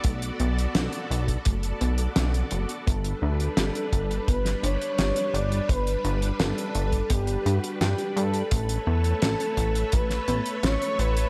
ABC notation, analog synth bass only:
X:1
M:4/4
L:1/8
Q:1/4=85
K:Glyd
V:1 name="Analog synth bass" clef=bass
B,,, B,,, B,,, B,,, F,,, B,,, B,,, F,,, | G,,, D,, G,,, G,,, G,,, G,,, G,,, G,,, | G,,, G,,, G,,, G,,, G,,, G,, G,, G,, | A,,, E,, A,,, A,,, A,,, A,,, A,,, A,,, |]